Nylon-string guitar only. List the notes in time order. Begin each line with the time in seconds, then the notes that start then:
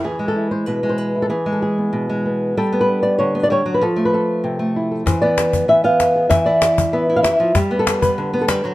0.04 E3 G#4
0.19 G#3
0.28 A4
0.36 E4
0.51 C5
0.66 B2 B4
0.83 G#3
0.89 C5
0.98 B4
1.15 E4
1.22 A4
1.30 E3 G#4
1.46 G#3
1.52 A4
1.62 G#4
1.78 B3
1.93 B2
2.10 G#3
2.26 B3
2.57 G3 A4
2.73 B3
2.81 B4
2.89 D4
3.03 D5
3.19 D3 C#5
3.35 B3
3.43 D5
3.50 G3 C#5
3.66 F#3
3.74 B4
3.81 F3 A4
3.96 A3
4.05 B4
4.14 A4
4.44 C3
4.59 A3
4.76 E4
4.91 A4
5.06 E3 C5
5.22 B3 D5
5.68 E3 E5
5.84 B3 F5
6.16 G#4
6.30 E3 E5
6.46 E4 D5
6.93 B3 E5
7.09 E4
7.16 F5
7.23 E3 E5
7.40 F3
7.56 G3 G4
7.71 B3
7.79 A4
8.02 B4
8.18 D3
8.33 B3
8.41 A4
8.48 G3 B4
8.64 F#3 C5